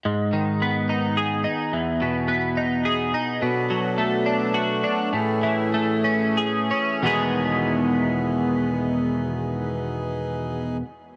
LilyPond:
<<
  \new Staff \with { instrumentName = "Harmonium" } { \time 3/4 \key e \major \tempo 4 = 101 r2. | r2. | <fis b d' a'>2. | <e a cis' gis'>2. |
<b dis' gis'>2.~ | <b dis' gis'>2. | }
  \new Staff \with { instrumentName = "Clean electric guitar" } { \time 3/4 \key e \major gis,8 dis8 b8 dis'8 gis'8 dis'8 | e,8 b,8 b8 dis'8 gis'8 dis'8 | b,8 fis8 a8 d'8 fis'8 d'8 | a,8 e8 a8 cis'8 gis'8 cis'8 |
<e, b, dis gis b gis'>2.~ | <e, b, dis gis b gis'>2. | }
>>